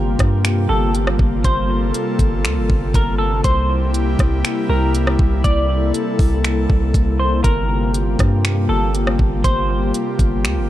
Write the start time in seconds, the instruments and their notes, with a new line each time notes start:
Already playing: 808-style bass G1, analog synth pad C3 G3 A#3 F4 G4
0.19 808-style bass G2, kick, cross-stick, closed hi-hat
0.45 finger snap, closed hi-hat
0.69 808-style bass G1, clean electric guitar A4
0.95 closed hi-hat
1.07 cross-stick
1.19 808-style bass G1, kick
1.44 808-style bass G1, analog synth pad A4, clean electric guitar C5, kick, closed hi-hat
1.94 closed hi-hat
2.19 808-style bass G1, kick, closed hi-hat
2.44 808-style bass D2, finger snap, closed hi-hat
2.57 808-style bass G1
2.70 808-style bass G1, kick
2.94 808-style bass G1, clean electric guitar A#4, kick, closed hi-hat
3.18 clean electric guitar A4
3.44 808-style bass C2, analog synth pad G3 A#3 E4 G4, clean electric guitar C5, kick, closed hi-hat
3.94 closed hi-hat
4.19 808-style bass C2, kick, cross-stick, closed hi-hat
4.45 finger snap, closed hi-hat
4.69 808-style bass C2, clean electric guitar A#4
4.95 closed hi-hat
5.07 cross-stick
5.19 808-style bass C2, kick
5.44 808-style bass C2, analog synth pad A4, clean electric guitar D5, kick, closed hi-hat
5.94 closed hi-hat
6.19 808-style bass C2, kick, open hi-hat
6.44 finger snap, closed hi-hat
6.70 808-style bass C2, kick
6.94 808-style bass C2, kick, closed hi-hat
7.19 clean electric guitar C5
7.44 808-style bass G1, analog synth pad G3 F4 G4, clean electric guitar A#4, kick, closed hi-hat
7.94 closed hi-hat
8.19 808-style bass G2, kick, cross-stick, closed hi-hat
8.45 finger snap, closed hi-hat
8.69 808-style bass G1, clean electric guitar A4
8.95 closed hi-hat
9.07 cross-stick
9.19 808-style bass G1, kick
9.44 808-style bass G1, clean electric guitar C5, kick, closed hi-hat
9.94 closed hi-hat
10.19 808-style bass G1, kick, closed hi-hat
10.44 808-style bass D2, finger snap, closed hi-hat
10.57 808-style bass G1